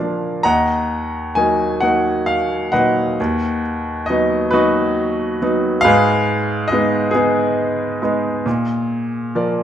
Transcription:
0.00 0.40 A#2 medium
0.00 0.46 F3 soft
0.00 0.46 A#3 soft
0.00 0.47 D4 soft
0.00 0.47 A#4 medium
0.00 0.40 D5 soft
0.00 0.47 F5 medium
0.43 3.15 D#2 medium
0.43 1.78 D#5 medium
0.43 1.78 F#5 medium
0.43 1.38 A#5 medium
1.35 1.81 F#3 soft
1.35 1.81 A#3 soft
1.35 1.82 D#4 soft
1.35 1.83 G#5 medium
1.80 2.71 F#3 soft
1.80 2.71 A#3 soft
1.80 2.71 D#4 soft
1.80 2.28 F#5 medium
2.26 2.74 F5 medium
2.72 3.18 A#2 soft
2.72 3.18 F#3 soft
2.72 3.18 D#4 soft
2.72 4.05 B4 soft
2.72 4.05 D#5 medium
2.72 3.59 F#5 medium
3.20 5.82 D#2 medium
4.06 4.51 F#3 soft
4.06 4.52 B3 soft
4.06 4.53 D#5 medium
4.10 4.52 D#4 medium
4.51 5.38 F#3 soft
4.51 5.39 B3 soft
4.51 5.41 D#4 medium
4.51 5.81 F#4 medium
4.51 5.83 B4 medium
5.42 5.84 F#3 soft
5.42 5.84 B3 soft
5.42 5.84 D#4 medium
5.81 7.09 G#4 medium
5.81 7.11 B4 medium
5.81 6.66 F5 loud
5.85 8.42 G#2 medium
6.68 7.10 D#5 medium
6.72 7.14 G#3 soft
6.72 7.14 B3 soft
6.72 7.14 D#4 soft
7.11 9.63 G#4 medium
7.15 7.99 G#3 soft
7.15 8.01 B3 soft
7.15 8.02 D#4 medium
8.02 8.45 G#3 soft
8.02 8.45 B3 soft
8.02 8.45 D#4 soft
8.46 9.63 A#2 medium
9.35 9.63 F3 soft
9.35 9.63 A#4 soft
9.35 9.63 D5 soft

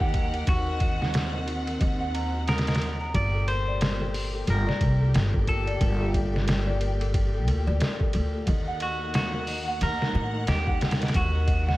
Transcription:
0.00 0.45 D#2 loud
0.00 3.10 D#3 medium
0.00 0.43 A#3 medium
0.00 0.48 G4 medium
0.00 3.10 F#5 medium
0.00 0.13 F#5 loud
0.00 kick medium
0.14 0.32 D#5 medium
0.14 kick loud
0.14 ride medium
0.34 0.46 A#4 medium
0.34 ride soft
0.47 1.78 D#2 loud
0.47 3.12 C4 medium
0.47 0.67 F#4 medium
0.47 2.44 F#4 loud
0.47 kick loud
0.47 ride medium
0.68 0.80 A#4 medium
0.80 1.00 D#5 medium
0.80 kick loud
0.80 ride medium
1.01 1.14 F#5 loud
1.01 snare soft
1.14 1.32 D#5 medium
1.14 snare loud
1.14 ride medium
1.35 1.47 A#4 medium
1.48 1.67 F#4 medium
1.48 ride medium
1.67 1.80 A#4 medium
1.67 ride soft
1.81 3.12 D#2 loud
1.81 2.00 D#5 medium
1.81 kick loud
1.81 ride medium
2.00 2.13 F#5 loud
2.14 2.33 A#5 medium
2.14 ride medium
2.34 2.46 F#4 medium
2.48 3.15 A#4 loud
2.48 2.66 D#6 medium
2.48 snare medium
2.48 ride medium
2.58 snare medium
2.58 ride medium
2.67 2.80 D#5 medium
2.67 snare medium
2.67 ride medium
2.75 snare medium
2.75 ride medium
2.81 3.00 A#4 medium
2.81 ride medium
3.01 3.14 A#5 medium
3.14 4.45 G1 loud
3.14 8.44 A#2 medium
3.14 3.33 G4 medium
3.14 8.43 G4 medium
3.14 3.47 D5 loud
3.14 kick loud
3.14 ride medium
3.34 3.47 A4 medium
3.48 3.67 A#4 medium
3.48 4.50 C5 loud
3.48 ride medium
3.68 3.80 D5 loud
3.81 3.99 A#4 medium
3.81 snare loud
3.81 ride medium
4.00 4.13 A4 medium
4.14 4.33 G4 medium
4.14 open hi-hat medium
4.34 4.47 A4 medium
4.47 4.65 G1 medium
4.47 4.66 A#4 medium
4.47 5.11 A#4 medium
4.47 ride medium
4.67 4.80 D5 loud
4.67 snare medium
4.81 5.11 C2 medium
4.81 4.99 A#4 medium
4.81 kick medium
4.81 ride medium
5.01 5.13 A4 medium
5.14 5.79 G1 loud
5.14 snare loud
5.14 ride medium
5.34 5.47 A4 medium
5.34 kick loud
5.47 6.11 A4 loud
5.47 5.67 A#4 medium
5.47 kick medium
5.47 ride medium
5.67 5.80 D5 loud
5.67 ride soft
5.81 7.48 G1 loud
5.81 5.99 A#4 medium
5.81 kick loud
5.81 ride medium
6.01 6.13 A4 medium
6.13 6.33 G4 medium
6.13 kick loud
6.13 ride medium
6.33 6.46 A4 medium
6.33 snare soft
6.47 6.66 A#4 medium
6.47 snare loud
6.47 ride loud
6.67 6.80 D5 loud
6.81 6.99 A#4 medium
6.81 ride medium
7.01 7.13 A4 medium
7.01 ride soft
7.14 7.33 G4 medium
7.14 kick loud
7.14 ride medium
7.34 7.47 A4 medium
7.47 7.66 D2 loud
7.47 7.66 A#4 medium
7.47 ride medium
7.67 7.79 D2 loud
7.67 7.80 D5 loud
7.80 7.99 A#4 medium
7.80 snare loud
7.80 ride medium
8.00 8.13 A4 medium
8.00 kick loud
8.13 8.44 D2 loud
8.13 8.33 G4 medium
8.13 ride medium
8.34 8.47 A4 medium
8.47 9.78 D#2 loud
8.47 11.77 D#3 medium
8.47 11.12 A#3 medium
8.47 8.67 D#5 medium
8.47 11.77 F#5 medium
8.47 kick loud
8.47 ride medium
8.68 8.80 F#5 loud
8.80 9.14 F#4 medium
8.80 8.99 D#5 medium
8.80 ride medium
9.01 9.13 A#4 medium
9.14 9.33 F#4 medium
9.14 9.82 F#4 medium
9.14 snare loud
9.14 ride loud
9.34 9.47 A#4 medium
9.47 9.67 D#5 medium
9.47 open hi-hat medium
9.68 9.80 F#5 loud
9.81 9.99 D#2 loud
9.81 10.49 A#4 loud
9.81 9.99 D#5 medium
9.81 ride medium
10.01 10.13 A#4 medium
10.01 snare medium
10.15 10.45 A2 loud
10.15 10.33 F#4 medium
10.34 10.47 A#4 medium
10.47 11.12 D#2 loud
10.47 11.11 G4 loud
10.47 10.66 D#5 medium
10.47 snare loud
10.47 ride medium
10.67 10.80 F#5 loud
10.67 kick medium
10.81 10.99 D#5 medium
10.81 snare medium
10.81 ride medium
10.91 snare loud
10.91 ride medium
11.01 11.13 A#4 medium
11.01 snare medium
11.01 ride medium
11.08 snare medium
11.08 ride medium
11.14 11.77 D#2 loud
11.14 11.33 F#4 medium
11.14 11.77 F#4 medium
11.14 kick loud
11.14 ride medium
11.34 11.47 A#4 medium
11.47 11.66 D#5 medium
11.47 kick loud
11.47 ride medium
11.67 11.77 F#5 loud
11.67 snare soft

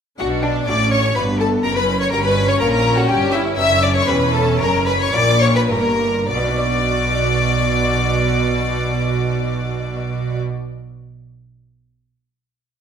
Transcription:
0.18 0.65 B1 medium
0.18 0.64 B2 medium
0.18 0.64 D4 medium
0.18 0.42 F#4 medium
0.18 0.28 F#4 medium
0.18 0.26 F#5 loud
0.43 0.51 D4 medium
0.43 0.68 D4 medium
0.43 0.67 D5 medium
0.67 1.15 A1 medium
0.67 1.15 A2 medium
0.67 1.12 A2 medium
0.67 1.16 C#4 medium
0.67 1.12 D4 soft
0.67 1.13 F#4 medium
0.67 0.92 D5 medium
0.67 0.91 D6 loud
0.91 1.17 C#5 medium
0.91 1.16 C#5 medium
0.91 1.16 C#6 loud
1.15 1.64 G1 medium
1.15 1.60 G2 medium
1.15 1.64 G2 medium
1.15 1.65 B3 medium
1.15 1.60 D4 soft
1.15 1.60 F#4 soft
1.15 1.41 B4 medium
1.15 1.24 B4 medium
1.15 1.24 B5 loud
1.39 1.65 A4 medium
1.39 1.48 A4 medium
1.39 1.49 A5 medium
1.64 2.11 F#1 medium
1.64 2.09 F#2 medium
1.64 2.12 F#2 medium
1.64 4.07 C#4 medium
1.64 1.78 A#4 medium
1.64 1.76 A#4 medium
1.64 1.76 A#5 loud
1.76 1.84 B4 medium
1.76 2.00 B4 medium
1.76 2.00 B5 loud
2.00 2.11 C#5 medium
2.00 2.12 C#5 medium
2.00 2.06 C#6 loud
2.12 2.60 G1 medium
2.12 2.57 G2 medium
2.12 2.60 G2 medium
2.12 2.57 C#4 medium
2.12 2.57 F#4 medium
2.12 2.24 A#4 medium
2.12 2.24 A#5 loud
2.24 2.48 B4 medium
2.24 2.50 B4 medium
2.24 2.48 B5 medium
2.48 2.61 C#5 medium
2.48 2.53 C#5 medium
2.48 2.61 C#6 loud
2.59 3.08 A#1 medium
2.59 3.08 A#2 medium
2.59 3.05 A#2 medium
2.59 3.05 C#4 soft
2.59 3.06 F#4 soft
2.59 2.71 A#4 medium
2.59 2.72 A#4 medium
2.59 2.70 A#5 loud
2.72 2.99 A#4 medium
2.72 2.97 A#4 medium
2.72 2.96 A#5 loud
2.97 3.10 F#4 medium
2.97 3.09 F#4 medium
2.97 3.09 F#5 loud
3.08 3.57 G1 medium
3.08 3.54 G2 medium
3.08 3.57 G2 medium
3.08 3.36 G4 medium
3.08 3.33 G4 medium
3.08 3.16 G5 loud
3.32 3.58 E4 medium
3.32 3.57 E4 medium
3.32 3.40 E5 loud
3.57 4.07 F#1 medium
3.57 4.04 F#2 medium
3.57 4.07 F#2 medium
3.57 4.04 B3 medium
3.57 4.04 D4 medium
3.57 4.05 G4 medium
3.57 3.85 E5 loud
3.57 3.82 E5 loud
3.57 3.82 E6 loud
3.82 3.96 D5 medium
3.82 3.94 D5 medium
3.82 3.95 D6 loud
3.94 4.00 C#5 medium
3.94 4.08 C#5 medium
3.94 4.08 C#6 loud
4.07 4.59 E1 medium
4.07 4.56 E2 medium
4.07 4.59 E2 medium
4.07 4.56 C#4 soft
4.07 5.11 C#4 medium
4.07 4.56 E4 soft
4.07 4.56 G4 soft
4.07 4.33 B4 medium
4.07 4.15 B4 loud
4.07 4.33 B5 loud
4.32 4.59 A4 medium
4.32 4.60 A4 medium
4.32 4.60 A5 loud
4.59 5.13 F#1 medium
4.59 5.10 F#2 medium
4.59 5.14 F#2 medium
4.59 4.85 A#4 loud
4.59 4.86 A#4 medium
4.59 4.86 A#5 loud
4.86 4.92 B4 medium
4.86 5.00 B4 medium
4.86 5.00 B5 loud
5.00 5.15 C#5 loud
5.00 5.13 C#5 medium
5.00 5.14 C#6 loud
5.13 5.69 A#1 medium
5.13 5.66 A#2 medium
5.13 5.69 A#2 medium
5.13 5.69 A#3 medium
5.13 5.66 C#4 medium
5.13 5.66 E4 medium
5.13 5.66 F#4 medium
5.13 5.42 D5 loud
5.13 5.41 D5 medium
5.13 5.41 D6 loud
5.41 5.47 C#5 loud
5.41 5.56 C#5 medium
5.41 5.56 C#6 loud
5.55 5.70 B4 medium
5.55 5.62 B4 medium
5.55 5.62 B5 loud
5.69 6.30 G1 medium
5.69 6.26 G2 medium
5.69 6.30 G2 medium
5.69 6.04 A#3 medium
5.69 6.26 C#4 soft
5.69 6.26 E4 soft
5.69 6.26 F#4 medium
5.69 6.30 A#4 medium
5.69 6.29 A#4 medium
5.69 6.28 A#5 loud
6.29 10.39 B1 medium
6.29 10.39 B2 medium
6.29 10.39 F#4 medium
6.29 10.38 D5 medium
6.29 10.39 D5 medium
6.29 10.38 D6 medium
6.37 10.46 B3 medium
6.44 10.53 D4 medium
6.51 10.60 F#4 medium
6.58 10.67 D5 medium

